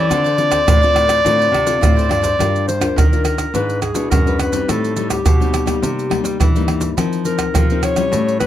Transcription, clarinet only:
Already playing: D5
2.12 D5
2.68 C5
2.97 A#4
3.25 A#4
3.55 B4
3.82 G#4
4.11 A#4
4.39 B4
4.69 A4
4.96 A4
5.09 G4
7.25 A#4
7.83 C#5
8.40 B4

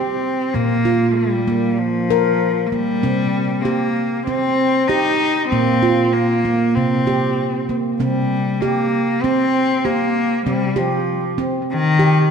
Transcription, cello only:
Already playing: C4
0.54 A#3
1.16 G3
1.78 F3
2.66 G3 A#3
3.60 A#3 C4
4.27 C4
4.88 D#4
5.49 C4
6.13 A#3
6.75 C4
8.02 G3
8.61 A#3
9.22 C4
9.85 A#3
10.47 G3
10.78 F3
11.71 D#3

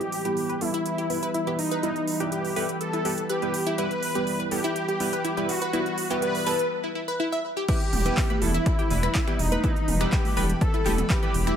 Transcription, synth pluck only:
0.25 G4
0.49 B4
0.74 E4
0.98 G4
1.23 B4
1.34 E4
1.47 G4
1.71 B4
1.83 E4
2.20 G4
2.56 B4
2.93 E4
3.05 G4
3.30 B4
3.67 E4
3.78 E4
4.15 G4
4.40 B4
4.64 E4
4.89 G4
5.13 B4
5.25 E4
5.37 G4
5.62 B4
5.73 E4
6.11 G4
6.47 B4
6.84 E4
6.95 E4
7.08 B4
7.20 E4
7.32 E5
7.57 G4
7.68 E4 E5
8.06 G4 G5
8.30 B4 B5
8.54 E4 E5
8.79 G4 G5
9.03 B4 B5
9.15 E4 E5
9.27 G4 G5
9.52 B4 B5
9.64 E4 E5
10.01 G4 G5
10.37 B4 B5
10.74 E4 E5
10.86 G4 G5
11.10 B4 B5
11.47 E4 E5

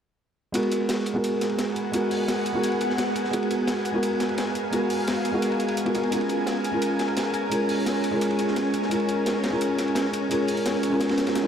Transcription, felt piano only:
0.52 G#3 B3 F#4 A#4
1.14 G#3 B3 F#4 A#4
1.92 G#3 B3 F#4 A#4
2.53 G#3 B3 F#4 A#4
3.31 G#3 B3 F#4 A#4
3.93 G#3 B3 F#4 A#4
4.71 G#3 B3 F#4 A#4
5.32 G#3 B3 F#4 A#4
5.85 G#3 B3 F#4 A#4
5.94 G#3 B3 F#4 A#4
6.11 G#3 C#4 F4 A#4
6.72 G#3 C#4 F4 A#4
7.50 G#3 C#4 F4 A#4
8.11 G#3 C#4 F4 A#4
8.90 G#3 C#4 F4 A#4
9.51 G#3 C#4 F4 A#4
10.29 G#3 C#4 F4 A#4
10.90 G#3 C#4 F4 A#4
11.43 G#3 C#4

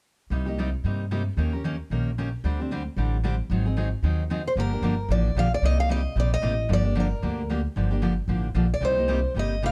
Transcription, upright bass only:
0.30 C2
0.84 G2
1.37 D#2
1.90 A#1
2.44 D2
2.97 A1
3.50 G#1
4.03 D#2
4.56 G1
4.82 G1
5.09 A1
5.35 A#1
5.62 C2
6.16 A#1
6.42 A1
6.69 G1
7.23 D2
7.76 G1
8.28 A1
8.54 A#1
8.81 C2
9.34 G1

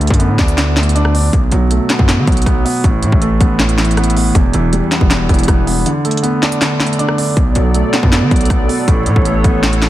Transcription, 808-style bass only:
0.10 F#2
0.29 A2
0.39 D2
1.33 B1
1.52 B1
1.99 F#2
2.18 D3
2.27 B1
2.46 B1
2.84 A1
3.03 A2
3.12 A1
3.41 A1
4.35 E1
4.54 E1
5.01 E1
5.29 E1
5.48 E1
7.37 B1
7.56 B1
8.03 F#2
8.22 D3
8.31 B1
8.50 B1
8.88 A1
9.07 A2
9.16 A1
9.44 A1

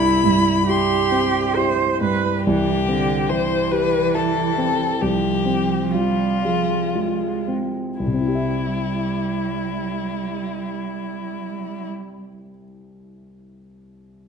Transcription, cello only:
Already playing: E4
0.68 G4
1.56 C5
2.03 B4
2.46 E3
2.88 D3
3.30 E3
5.03 F3
5.94 G3
6.44 F3
6.95 G#3
8.02 G3

